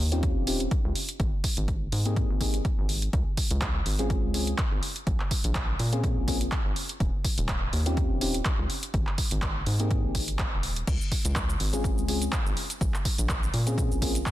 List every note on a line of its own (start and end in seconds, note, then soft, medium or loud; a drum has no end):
0.00 0.38 D#2 loud
0.12 0.44 C4 medium
0.12 0.44 C#4 medium
0.12 0.45 D#4 medium
0.12 0.45 F4 medium
0.12 0.45 G4 loud
0.12 closed hi-hat medium
0.23 kick loud
0.23 closed hi-hat soft
0.36 0.67 D#1 medium
0.47 0.62 C4 medium
0.47 0.62 C#4 medium
0.47 0.62 D#4 medium
0.47 0.62 F4 medium
0.47 0.62 G4 medium
0.47 open hi-hat loud
0.60 closed hi-hat medium
0.71 kick loud
0.71 closed hi-hat soft
0.85 0.93 C#2 medium
0.95 open hi-hat medium
1.09 closed hi-hat medium
1.20 1.30 G#1 medium
1.20 kick loud
1.20 closed hi-hat soft
1.44 kick medium
1.44 open hi-hat loud
1.57 1.88 G#1 medium
1.57 closed hi-hat medium
1.68 kick loud
1.68 closed hi-hat soft
1.92 2.25 G#2 loud
1.92 open hi-hat medium
2.05 2.38 A#3 medium
2.05 2.38 C4 medium
2.05 2.38 D#4 medium
2.05 2.38 G4 medium
2.05 2.38 G#4 loud
2.05 closed hi-hat medium
2.16 kick loud
2.16 closed hi-hat soft
2.30 2.61 G#1 loud
2.40 2.55 A#3 medium
2.40 2.56 C4 medium
2.40 2.56 D#4 medium
2.40 2.56 G4 medium
2.40 2.56 G#4 loud
2.40 kick medium
2.40 open hi-hat loud
2.54 closed hi-hat medium
2.65 kick loud
2.65 closed hi-hat soft
2.78 3.09 G#1 loud
2.89 open hi-hat medium
3.02 closed hi-hat medium
3.13 3.23 C#2 medium
3.13 kick loud
3.13 closed hi-hat soft
3.37 kick medium
3.37 open hi-hat loud
3.51 3.82 C#2 loud
3.51 closed hi-hat medium
3.61 kick loud
3.61 clap loud
3.61 closed hi-hat soft
3.86 4.25 G#1 loud
3.86 open hi-hat medium
3.99 4.31 G#3 medium
3.99 4.32 C4 medium
3.99 4.32 C#4 medium
3.99 4.32 F4 medium
3.99 4.32 G#4 loud
3.99 closed hi-hat medium
4.10 kick loud
4.10 closed hi-hat soft
4.23 4.54 C#2 medium
4.34 4.49 G#3 medium
4.34 4.49 C4 medium
4.34 4.49 C#4 medium
4.34 4.49 F4 medium
4.34 4.49 G#4 medium
4.34 open hi-hat medium
4.47 closed hi-hat medium
4.58 kick loud
4.58 clap loud
4.58 closed hi-hat soft
4.72 4.80 G#1 medium
4.83 open hi-hat medium
4.96 closed hi-hat medium
5.07 5.17 A#1 loud
5.07 kick loud
5.07 closed hi-hat soft
5.20 clap soft
5.31 kick medium
5.31 open hi-hat loud
5.44 5.75 A#1 medium
5.44 closed hi-hat medium
5.55 kick loud
5.55 clap loud
5.55 closed hi-hat medium
5.79 6.18 A#2 loud
5.79 open hi-hat medium
5.92 6.25 A#3 medium
5.92 6.25 C4 medium
5.92 6.25 C#4 medium
5.92 6.25 F4 medium
5.92 6.25 G#4 loud
5.92 closed hi-hat medium
6.04 kick loud
6.04 closed hi-hat medium
6.17 6.48 A#1 medium
6.27 6.43 A#3 medium
6.27 6.43 C4 medium
6.27 6.43 C#4 medium
6.27 6.43 F4 medium
6.27 6.43 G#4 medium
6.27 kick medium
6.27 open hi-hat medium
6.41 closed hi-hat medium
6.52 kick loud
6.52 clap loud
6.52 closed hi-hat soft
6.65 6.74 G#1 medium
6.76 open hi-hat medium
6.89 closed hi-hat medium
7.00 7.10 D#1 loud
7.00 kick loud
7.00 closed hi-hat medium
7.24 kick medium
7.24 open hi-hat medium
7.38 7.69 D#1 medium
7.38 closed hi-hat medium
7.49 kick loud
7.49 clap loud
7.49 closed hi-hat medium
7.73 8.12 D#2 loud
7.73 open hi-hat medium
7.86 8.18 C4 medium
7.86 8.19 C#4 medium
7.86 8.19 D#4 medium
7.86 8.19 F4 medium
7.86 8.19 G4 loud
7.86 closed hi-hat medium
7.97 kick loud
7.97 closed hi-hat medium
8.10 8.41 D#1 medium
8.21 8.36 C4 medium
8.21 8.36 C#4 medium
8.21 8.36 D#4 medium
8.21 8.36 F4 medium
8.21 8.36 G4 medium
8.21 open hi-hat medium
8.34 closed hi-hat medium
8.45 kick loud
8.45 clap loud
8.45 closed hi-hat soft
8.59 8.67 C#2 medium
8.70 open hi-hat medium
8.83 closed hi-hat medium
8.94 9.04 G#1 loud
8.94 kick loud
8.94 closed hi-hat medium
9.07 clap soft
9.18 kick medium
9.18 open hi-hat medium
9.31 9.62 G#1 medium
9.31 closed hi-hat medium
9.42 kick loud
9.42 clap loud
9.42 closed hi-hat medium
9.66 10.05 G#2 loud
9.66 open hi-hat medium
9.79 10.12 A#3 medium
9.79 10.12 C4 medium
9.79 10.12 D#4 medium
9.79 10.12 G4 medium
9.79 10.12 G#4 loud
9.79 closed hi-hat medium
9.91 kick loud
9.91 closed hi-hat medium
10.04 10.54 G#1 medium
10.15 kick medium
10.15 open hi-hat medium
10.28 closed hi-hat medium
10.39 kick loud
10.39 clap loud
10.39 closed hi-hat medium
10.52 10.83 D#1 medium
10.63 open hi-hat medium
10.76 closed hi-hat medium
10.87 10.97 C#2 loud
10.87 kick loud
10.87 closed hi-hat medium
10.87 crash medium
10.87 shaker medium
11.01 shaker soft
11.12 kick medium
11.12 open hi-hat loud
11.25 11.56 C#2 medium
11.25 closed hi-hat medium
11.25 shaker medium
11.36 kick loud
11.36 clap loud
11.36 closed hi-hat medium
11.36 shaker medium
11.50 shaker soft
11.60 11.99 G#1 loud
11.60 open hi-hat medium
11.73 12.06 G#3 medium
11.73 12.06 C4 medium
11.73 12.06 C#4 medium
11.73 12.06 F4 medium
11.73 12.06 G#4 loud
11.73 closed hi-hat medium
11.73 shaker medium
11.84 kick loud
11.84 closed hi-hat medium
11.84 shaker medium
11.97 12.28 C#2 medium
11.97 shaker soft
12.08 12.23 G#3 medium
12.08 12.23 C4 medium
12.08 12.23 C#4 medium
12.08 12.23 F4 medium
12.08 12.24 G#4 loud
12.08 open hi-hat loud
12.22 closed hi-hat medium
12.22 shaker medium
12.32 kick loud
12.32 clap loud
12.32 closed hi-hat medium
12.32 shaker medium
12.46 12.54 G#1 medium
12.46 shaker soft
12.57 open hi-hat medium
12.70 closed hi-hat medium
12.70 shaker medium
12.81 12.91 A#1 loud
12.81 kick loud
12.81 closed hi-hat medium
12.81 shaker soft
12.94 clap soft
12.94 shaker soft
13.05 kick medium
13.05 open hi-hat loud
13.18 13.49 A#1 medium
13.18 closed hi-hat medium
13.18 shaker medium
13.29 kick loud
13.29 clap loud
13.29 closed hi-hat medium
13.29 shaker medium
13.43 shaker soft
13.54 13.92 A#2 loud
13.54 open hi-hat medium
13.66 13.99 A#3 loud
13.66 13.99 C4 medium
13.66 13.99 C#4 medium
13.66 13.99 F4 medium
13.66 14.00 G#4 loud
13.66 closed hi-hat medium
13.66 shaker medium
13.78 kick loud
13.78 closed hi-hat medium
13.78 shaker medium
13.91 14.22 A#1 medium
13.91 shaker soft
14.02 14.17 A#3 medium
14.02 14.17 C4 medium
14.02 14.17 C#4 medium
14.02 14.17 F4 medium
14.02 14.17 G#4 medium
14.02 kick medium
14.02 open hi-hat loud
14.15 closed hi-hat medium
14.15 shaker medium
14.26 kick loud
14.26 clap loud
14.26 closed hi-hat soft
14.26 shaker medium